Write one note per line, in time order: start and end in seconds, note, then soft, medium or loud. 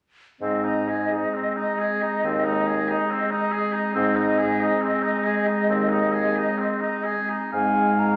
0.41 1.19 G#2 soft
0.41 3.93 G#3 soft
0.41 3.93 C4 soft
0.41 0.66 C4 soft
0.41 3.93 D#5 soft
0.65 0.90 D#4 soft
0.88 1.13 G#4 soft
1.12 1.36 D#4 soft
1.34 1.59 C4 soft
1.57 1.81 D#4 soft
1.79 2.03 G#4 soft
2.02 2.23 D#4 soft
2.23 2.96 D#2 soft
2.23 2.46 C4 soft
2.45 2.69 D#4 soft
2.67 2.90 G#4 soft
2.89 3.12 D#4 soft
3.11 3.32 C4 soft
3.31 3.53 D#4 soft
3.52 3.74 G#4 soft
3.72 3.93 D#4 soft
3.94 4.69 G#2 soft
3.94 7.16 G#3 soft
3.94 4.18 C4 soft
3.94 7.16 C4 soft
3.94 7.15 D#5 soft
4.16 4.40 D#4 soft
4.38 4.62 G#4 soft
4.61 4.83 D#4 soft
4.82 5.05 C4 soft
5.03 5.27 D#4 soft
5.25 5.48 G#4 soft
5.47 5.68 D#4 soft
5.69 6.43 D#2 soft
5.69 5.91 C4 soft
5.90 6.14 D#4 soft
6.13 6.38 G#4 soft
6.37 6.60 D#4 soft
6.58 6.82 C4 soft
6.81 7.06 D#4 soft
7.04 7.31 G#4 soft
7.29 7.52 D#4 soft
7.53 8.16 G#2 soft
7.53 8.16 G#3 soft
7.53 8.16 C4 soft
7.53 8.16 F5 soft
7.53 8.01 G#5 soft
7.99 8.16 A#5 soft